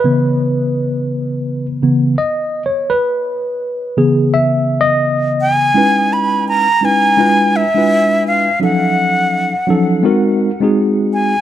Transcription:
0.00 1.66 B4 medium
0.04 1.81 C#3 medium
0.04 1.82 E3 soft
0.04 1.82 B3 medium
1.82 2.15 C#3 medium
1.82 2.15 E3 medium
1.82 2.15 B3 medium
2.18 2.62 D#5 medium
2.66 2.90 C#5 medium
2.90 4.00 B4 loud
3.97 5.71 C#3 medium
3.97 5.72 E3 medium
3.97 5.72 B3 medium
3.97 4.34 G#4 medium
4.34 4.82 E5 loud
4.81 5.48 D#5 loud
5.41 6.14 G#5 loud
5.74 6.66 G#3 medium
5.74 6.66 C#4 medium
5.74 6.66 D#4 medium
5.74 6.67 E4 medium
5.74 6.67 B4 medium
6.13 6.48 B5 medium
6.49 6.86 A#5 loud
6.81 7.16 G#3 medium
6.81 7.18 C#4 medium
6.81 7.18 D#4 medium
6.81 7.17 E4 medium
6.81 7.19 B4 medium
6.85 7.58 G#5 loud
7.17 7.63 G#3 medium
7.17 7.63 D4 medium
7.17 7.64 E4 medium
7.17 7.64 F4 medium
7.17 7.65 B4 medium
7.56 8.26 E5 loud
7.75 8.48 G#3 medium
7.75 8.48 D4 medium
7.75 8.49 E4 medium
7.75 8.49 F4 medium
7.75 8.49 B4 medium
8.27 8.60 F5 medium
8.60 9.53 F3 medium
8.60 9.51 F#3 medium
8.60 9.52 C#4 medium
8.60 9.52 D#4 medium
8.60 9.53 A4 medium
8.60 10.01 F#5 medium
9.67 10.05 F3 medium
9.67 10.03 F#3 medium
9.67 10.04 C#4 medium
9.67 10.03 D#4 medium
9.67 10.05 A4 medium
10.03 10.49 G#3 medium
10.03 10.49 C4 medium
10.03 10.50 D#4 medium
10.03 10.50 F#4 medium
10.03 10.50 A#4 loud
10.61 11.33 G#3 medium
10.61 11.34 C4 medium
10.61 11.34 D#4 medium
10.61 11.35 F#4 medium
10.61 11.35 G#4 loud
11.14 11.41 G#5 medium

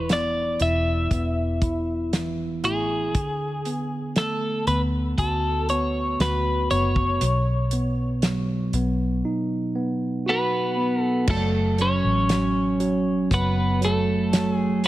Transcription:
0.00 0.56 E1 loud
0.00 2.12 E3 medium
0.00 0.60 E4 medium
0.00 0.12 C#5 medium
0.09 1.10 B3 medium
0.09 0.62 D5 medium
0.09 snare medium
0.09 closed hi-hat medium
0.60 1.08 E1 medium
0.60 1.61 E4 medium
0.60 2.65 E5 loud
0.60 closed hi-hat medium
1.11 2.63 E1 medium
1.11 3.10 B3 medium
1.11 kick medium
1.11 closed hi-hat medium
1.62 2.62 E4 medium
1.62 kick medium
1.62 closed hi-hat medium
2.13 3.11 E3 medium
2.13 snare loud
2.13 closed hi-hat medium
2.63 3.15 A1 medium
2.63 3.13 E4 medium
2.63 4.17 G#4 medium
2.63 closed hi-hat medium
3.15 4.63 D2 loud
3.15 7.17 D3 medium
3.15 kick loud
3.15 closed hi-hat medium
3.65 4.66 B3 medium
3.65 closed hi-hat medium
4.16 6.16 A3 medium
4.16 4.67 A4 medium
4.16 snare loud
4.16 closed hi-hat medium
4.67 5.14 D2 medium
4.67 5.70 B3 medium
4.67 4.81 B4 medium
4.67 closed hi-hat medium
5.18 6.16 D2 medium
5.18 6.19 F#4 medium
5.18 5.69 A4 medium
5.18 kick medium
5.18 closed hi-hat medium
5.69 6.70 B3 medium
5.69 6.21 C#5 medium
5.69 closed hi-hat medium
6.20 6.67 D2 medium
6.20 7.19 F#4 medium
6.20 6.70 B4 medium
6.20 snare loud
6.20 closed hi-hat medium
6.71 7.18 F#1 medium
6.71 7.20 B3 medium
6.71 8.70 C#5 medium
6.71 closed hi-hat medium
6.96 kick medium
7.21 8.70 B1 loud
7.21 11.25 B2 medium
7.21 closed hi-hat loud
7.71 8.73 B3 medium
7.71 closed hi-hat medium
8.22 10.23 F#3 medium
8.22 snare loud
8.22 closed hi-hat medium
8.73 9.21 B1 medium
8.73 9.74 B3 medium
8.73 closed hi-hat medium
9.25 11.24 D#4 medium
9.76 10.76 B3 medium
10.26 11.26 B3 medium
10.26 11.25 F#4 medium
10.26 11.02 B4 medium
10.77 11.26 B3 medium
11.02 11.31 A4 medium
11.27 12.00 F#1 loud
11.27 11.78 F#3 medium
11.27 11.76 A3 medium
11.27 11.82 A4 medium
11.27 kick loud
11.27 crash medium
11.78 12.29 F#3 medium
11.78 13.29 C#4 medium
11.78 13.34 C#5 loud
11.78 closed hi-hat medium
12.04 13.27 A1 medium
12.29 12.79 F#3 medium
12.29 snare loud
12.29 closed hi-hat medium
12.80 13.30 F#3 medium
12.80 closed hi-hat medium
13.31 14.88 F#1 loud
13.31 13.80 F#3 medium
13.31 13.80 B3 medium
13.31 13.85 B4 medium
13.31 kick medium
13.31 closed hi-hat medium
13.81 14.32 F#3 medium
13.81 14.54 A4 medium
13.81 closed hi-hat medium
13.85 14.82 A3 medium
14.33 14.84 F#3 medium
14.33 snare loud
14.33 closed hi-hat medium
14.54 14.85 G#4 medium
14.84 closed hi-hat medium

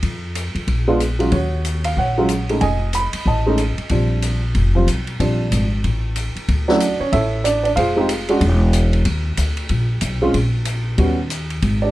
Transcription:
0.02 0.52 F2 medium
0.02 kick soft
0.02 ride medium
0.35 hi-hat pedal medium
0.35 ride medium
0.55 0.67 F2 medium
0.55 ride soft
0.67 1.29 A#1 medium
0.67 kick soft
0.67 ride medium
0.88 0.99 G#3 medium
0.88 0.99 B3 medium
0.88 0.99 D4 medium
0.88 0.99 F4 medium
1.00 hi-hat pedal medium
1.00 ride medium
1.19 1.31 F#3 medium
1.19 1.31 G#3 medium
1.19 1.31 C#4 medium
1.19 1.31 F4 medium
1.19 ride soft
1.32 1.94 D#2 medium
1.32 1.94 F#4 medium
1.32 1.81 C#5 medium
1.32 kick soft
1.32 ride medium
1.65 hi-hat pedal medium
1.65 ride medium
1.84 1.96 F5 medium
1.84 ride medium
1.97 2.58 A#1 medium
1.97 2.59 C#5 medium
1.97 2.58 F#5 medium
1.97 kick soft
2.18 2.29 F#3 medium
2.18 2.28 G#3 medium
2.18 2.29 C#4 medium
2.18 2.29 F4 medium
2.29 hi-hat pedal medium
2.29 ride medium
2.49 2.61 G#3 medium
2.49 2.61 A3 medium
2.49 2.61 C#4 medium
2.49 2.61 D#4 medium
2.49 ride soft
2.61 3.10 F1 medium
2.61 3.23 D#5 medium
2.61 2.95 G#5 medium
2.61 kick soft
2.61 ride medium
2.93 3.28 B5 medium
2.93 hi-hat pedal medium
2.93 ride medium
3.13 muted upright bass stroke soft
3.13 ride medium
3.26 3.74 A1 medium
3.26 3.87 D#5 medium
3.26 3.75 A5 medium
3.26 kick soft
3.46 3.57 G#3 medium
3.46 3.57 A3 medium
3.46 3.58 C#4 medium
3.46 3.58 D#4 medium
3.58 hi-hat pedal soft
3.58 ride medium
3.78 muted upright bass stroke soft
3.78 ride soft
3.89 4.52 A#1 medium
3.89 4.39 F3 soft
3.89 4.39 G3 soft
3.89 4.39 C4 soft
3.89 4.39 D4 medium
3.89 kick soft
3.89 ride medium
4.22 hi-hat pedal medium
4.22 ride medium
4.55 4.85 F1 medium
4.55 kick soft
4.55 ride soft
4.75 4.86 F3 medium
4.75 4.86 G3 medium
4.75 4.87 C4 medium
4.75 4.87 F4 medium
4.87 5.17 B1 medium
4.87 hi-hat pedal soft
4.87 ride medium
5.07 ride soft
5.20 5.50 A#1 medium
5.20 5.68 F3 soft
5.20 5.68 G3 soft
5.20 5.68 C4 soft
5.20 5.68 D4 medium
5.20 kick soft
5.20 ride medium
5.51 5.81 G#1 medium
5.51 hi-hat pedal medium
5.51 ride medium
5.84 6.33 A1 medium
5.84 kick soft
5.84 ride medium
6.16 hi-hat pedal soft
6.16 ride medium
6.36 muted upright bass stroke soft
6.36 ride soft
6.48 6.97 D2 medium
6.48 kick soft
6.48 ride medium
6.68 6.79 F#3 medium
6.68 6.80 A3 medium
6.68 6.80 C#4 medium
6.68 6.99 D4 medium
6.68 6.80 E4 medium
6.68 6.99 F#4 medium
6.68 7.01 D5 medium
6.68 snare soft
6.80 hi-hat pedal medium
6.80 ride medium
7.00 7.13 C#4 medium
7.00 7.13 C#5 medium
7.00 muted upright bass stroke soft
7.12 7.74 A1 medium
7.12 7.44 E4 medium
7.12 7.43 A4 medium
7.12 7.44 C#5 medium
7.12 7.46 E5 medium
7.12 kick soft
7.12 ride medium
7.44 7.64 D4 medium
7.44 7.62 D5 medium
7.44 hi-hat pedal medium
7.44 ride medium
7.64 7.71 D4 medium
7.64 7.69 D5 medium
7.64 ride soft
7.76 8.38 F1 medium
7.76 8.38 F4 medium
7.76 8.38 G#4 medium
7.76 8.37 C5 medium
7.76 8.37 F5 medium
7.76 kick soft
7.76 ride medium
7.96 8.08 G#3 medium
7.96 8.08 C4 medium
7.96 8.08 D#4 medium
7.96 8.08 G4 medium
8.09 hi-hat pedal medium
8.09 ride medium
8.28 8.40 G#3 medium
8.28 8.40 C#4 medium
8.28 8.41 D4 medium
8.28 8.41 F#4 medium
8.28 ride soft
8.41 9.02 E1 medium
8.41 kick soft
8.41 ride medium
8.73 hi-hat pedal soft
8.73 ride medium
8.93 ride soft
9.05 9.35 D#2 medium
9.05 kick soft
9.05 ride medium
9.37 9.68 D2 medium
9.37 hi-hat pedal medium
9.37 ride medium
9.57 ride soft
9.69 10.00 A#1 medium
9.69 kick soft
9.69 ride medium
10.01 10.32 B1 medium
10.01 hi-hat pedal medium
10.01 ride medium
10.22 10.33 G#3 medium
10.22 10.33 C4 medium
10.22 10.33 C#4 medium
10.22 10.33 F4 medium
10.34 10.95 A#1 medium
10.34 kick soft
10.34 ride medium
10.65 hi-hat pedal medium
10.65 ride medium
10.98 11.59 D#2 medium
10.98 11.16 G3 medium
10.98 11.16 B3 medium
10.98 11.17 C#4 medium
10.98 11.17 F#4 medium
10.98 kick soft
10.98 ride medium
11.30 hi-hat pedal medium
11.30 ride medium
11.50 ride soft
11.62 11.91 G#1 medium
11.62 kick soft
11.62 ride medium
11.82 11.91 D4 medium
11.82 11.91 G4 medium
11.82 11.91 D5 medium

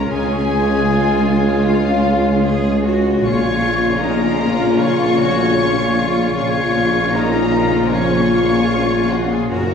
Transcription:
0.00 0.89 C#4 medium
0.00 0.10 A#4 medium
0.00 0.11 A#5 loud
0.10 3.19 C#2 medium
0.10 3.20 C#2 medium
0.10 3.19 C#3 medium
0.10 3.19 G#3 medium
0.10 3.19 C#4 medium
0.10 3.20 C#4 medium
0.10 3.20 F4 medium
0.10 3.19 G#4 medium
0.10 1.64 G#4 medium
0.10 1.65 G#5 loud
0.88 2.42 F4 medium
1.67 2.43 F4 medium
1.67 2.44 F5 medium
2.45 2.83 G#4 medium
2.85 3.23 F#4 medium
3.23 6.32 A#1 medium
3.23 6.33 A#1 medium
3.23 6.33 C#3 medium
3.23 6.32 A#3 medium
3.23 6.33 A#3 medium
3.23 6.32 C#4 medium
3.23 6.21 C#4 medium
3.23 6.21 F4 medium
3.23 4.02 F4 medium
3.23 6.32 F4 medium
3.23 3.97 C#5 medium
3.23 3.98 C#6 loud
4.01 4.41 D#4 medium
4.01 4.80 A#4 medium
4.01 4.80 A#5 loud
4.40 4.79 C#4 medium
4.79 5.18 F4 medium
4.79 6.35 C#5 medium
4.79 6.34 C#6 loud
5.18 5.57 F#4 medium
5.57 7.11 F4 medium
6.36 9.34 A#1 medium
6.36 9.47 A#1 medium
6.36 9.46 C#3 medium
6.36 9.32 F3 medium
6.36 9.32 A#3 medium
6.36 9.46 A#3 medium
6.36 9.46 C#4 medium
6.36 9.47 C#4 medium
6.36 9.46 F4 medium
6.36 9.47 F4 medium
6.36 7.13 C#5 loud
6.36 7.14 C#6 loud
7.14 7.92 D#4 medium
7.14 7.93 A#4 medium
7.14 7.93 A#5 loud
7.93 8.32 C#4 medium
7.93 9.11 C#5 medium
7.93 9.08 C#6 loud
8.33 9.51 F4 medium
9.10 9.30 F#4 medium
9.10 9.31 F#5 medium
9.30 9.50 G#4 medium
9.30 9.50 G#5 medium
9.49 9.74 F#1 medium
9.49 9.74 C#3 medium
9.49 9.74 A#3 medium
9.49 9.74 C#4 medium
9.49 9.74 F#4 medium
9.49 9.74 A#4 medium
9.49 9.74 A#5 loud

